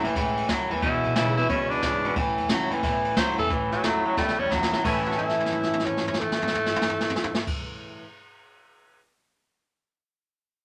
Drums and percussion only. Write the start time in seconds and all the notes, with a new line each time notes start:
0.04 ride
0.16 kick, snare, ride
0.37 ride
0.49 kick, snare, ride
0.71 ride
0.82 kick, ride
1.04 ride
1.16 snare, ride
1.37 ride
1.49 kick, ride
1.71 ride
1.83 kick, snare, ride
2.04 ride
2.16 kick, ride
2.38 ride
2.49 snare, ride
2.71 ride
2.83 kick, snare, ride
3.05 ride
3.16 kick, snare, ride
3.38 ride
3.50 kick, closed hi-hat
3.72 snare, closed hi-hat
3.84 snare, closed hi-hat
4.05 closed hi-hat
4.17 kick, snare
4.28 snare
4.51 kick, snare
4.63 snare
4.73 snare
4.85 kick, crash
5.06 floor tom
5.12 snare
5.18 floor tom
5.29 snare
5.40 floor tom
5.46 snare
5.52 floor tom
5.63 snare
5.73 floor tom
5.79 snare
5.86 floor tom
5.97 snare
6.08 floor tom
6.14 snare
6.21 floor tom
6.32 snare
6.42 floor tom
6.47 snare
6.55 floor tom
6.66 snare
6.76 floor tom
6.81 snare
6.89 floor tom
7.00 snare
7.10 floor tom
7.16 snare
7.24 floor tom
7.35 snare
7.47 kick, crash